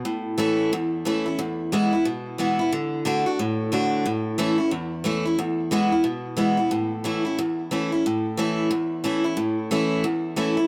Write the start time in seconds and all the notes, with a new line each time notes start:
0.05 A2
0.38 E3 A3 C#4 E4
0.73 E2
1.05 E3 A3 C#4 E4
1.26 C#4 E4
1.39 E2
1.72 E3 G#3 B3 E4
1.93 B3 E4
2.05 B2
2.38 E3 G#3 B3 E4
2.59 B3 E4
2.72 D3
3.05 D3 A3 D4 F#4
3.26 D4 F#4
3.39 A2
3.72 D3 A3 D4 F#4
4.06 A2
4.38 E3 A3 C#4 E4
4.58 C#4 E4
4.71 E2
5.04 E3 A3 C#4 E4
5.26 C#4 E4
5.39 E2
5.71 E3 G#3 B3 E4
5.92 B3 E4
6.04 B2
6.37 E3 G#3 B3 E4
6.57 B3 E4
6.71 A2
7.04 E3 A3 C#4 E4
7.25 C#4 E4
7.38 E2
7.71 E3 A3 C#4 E4
7.92 C#4 E4
8.06 A2
8.37 E3 A3 C#4 E4
8.71 E2
9.04 E3 A3 C#4 E4
9.24 C#4 E4
9.37 A2
9.71 E3 A3 C#4 E4
10.04 E2
10.36 E3 A3 C#4 E4
10.57 C#4 E4